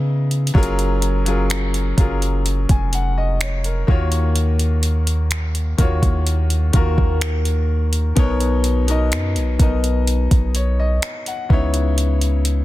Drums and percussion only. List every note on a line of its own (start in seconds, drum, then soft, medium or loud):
0.31 closed hi-hat soft
0.47 closed hi-hat soft
0.55 kick loud
0.63 closed hi-hat medium
0.79 closed hi-hat soft
1.02 closed hi-hat medium
1.26 closed hi-hat medium
1.50 finger snap loud
1.50 closed hi-hat medium
1.74 closed hi-hat soft
1.98 kick medium
1.98 closed hi-hat medium
2.22 closed hi-hat soft
2.46 closed hi-hat medium
2.69 kick medium
2.69 closed hi-hat soft
2.93 closed hi-hat medium
3.41 finger snap loud
3.41 closed hi-hat medium
3.64 closed hi-hat soft
3.88 kick loud
4.12 closed hi-hat medium
4.36 closed hi-hat medium
4.59 closed hi-hat soft
4.83 closed hi-hat medium
5.07 closed hi-hat medium
5.31 finger snap loud
5.31 closed hi-hat medium
5.55 closed hi-hat soft
5.78 kick medium
5.78 closed hi-hat medium
6.02 kick medium
6.02 closed hi-hat soft
6.27 closed hi-hat medium
6.50 closed hi-hat soft
6.73 kick medium
6.73 closed hi-hat medium
6.98 kick medium
7.21 finger snap loud
7.21 closed hi-hat medium
7.45 closed hi-hat soft
7.93 closed hi-hat medium
8.17 kick loud
8.17 closed hi-hat medium
8.40 closed hi-hat soft
8.64 closed hi-hat medium
8.88 closed hi-hat medium
9.12 finger snap loud
9.12 closed hi-hat medium
9.36 closed hi-hat soft
9.59 kick medium
9.59 closed hi-hat medium
9.84 closed hi-hat medium
10.07 closed hi-hat medium
10.31 kick medium
10.31 closed hi-hat medium
10.55 closed hi-hat medium
11.02 finger snap loud
11.02 closed hi-hat medium
11.26 closed hi-hat soft
11.50 kick loud
11.74 closed hi-hat medium
11.98 closed hi-hat medium
12.21 closed hi-hat soft
12.45 closed hi-hat medium